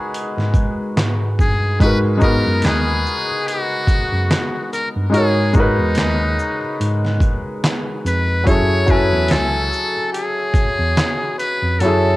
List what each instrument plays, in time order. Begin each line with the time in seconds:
Already playing: felt piano G#3 D#4 F#4 A#4 B4, muted trumpet G#4
0.14 closed hi-hat
0.37 tine electric piano G#2, snare
0.54 tine electric piano G#3, kick, closed hi-hat, shaker
0.97 tine electric piano G#2, snare, clap, closed hi-hat
1.39 tine electric piano G2, muted trumpet G#4, kick, shaker
1.80 tine electric piano G#2, felt piano G#3 D#4 F#4, muted trumpet B4, kick, closed hi-hat
1.85 felt piano A#4 B4
2.17 felt piano G#3 D#4 F#4, shaker
2.22 felt piano B3 A#4, muted trumpet A#4, kick
2.45 tine electric piano F#2
2.62 tine electric piano D#2, muted trumpet G#4, snare, clap, closed hi-hat
3.06 shaker
3.47 muted trumpet F#4, closed hi-hat
3.87 kick, closed hi-hat, shaker
4.12 tine electric piano F#2
4.31 snare, clap, closed hi-hat
4.73 muted trumpet A#4, closed hi-hat, shaker
4.96 tine electric piano G2
5.10 tine electric piano G#2, felt piano G#3 D#4 F#4
5.14 muted trumpet G#4, felt piano A#4 C#5, closed hi-hat
5.53 felt piano G#3 D#4 F#4, muted trumpet D#4, kick, shaker
5.58 felt piano A#4 B4
5.79 tine electric piano E2
5.95 tine electric piano D#2, snare, clap, closed hi-hat
6.39 shaker
6.80 tine electric piano G#2, closed hi-hat
7.05 snare
7.20 kick, closed hi-hat, shaker
7.64 snare, clap, closed hi-hat
8.05 tine electric piano F2, muted trumpet B4, closed hi-hat, shaker
8.44 tine electric piano F#2, felt piano F#3 C#4 E4, muted trumpet C#5, kick, closed hi-hat
8.49 felt piano G#4 A4
8.86 felt piano F#3 C#4 E4, muted trumpet B4, kick, shaker
8.91 felt piano A4 G#5
9.12 tine electric piano E2
9.28 tine electric piano C#2, muted trumpet A4, snare, clap, closed hi-hat
9.73 shaker
10.13 muted trumpet G#4, closed hi-hat
10.54 kick, closed hi-hat, shaker
10.79 tine electric piano E2
10.97 snare, clap, closed hi-hat
11.38 muted trumpet B4, closed hi-hat, shaker
11.62 tine electric piano F2
11.80 tine electric piano F#2, felt piano F#3 C#4, muted trumpet A4, closed hi-hat
11.84 felt piano E4 G#4 A4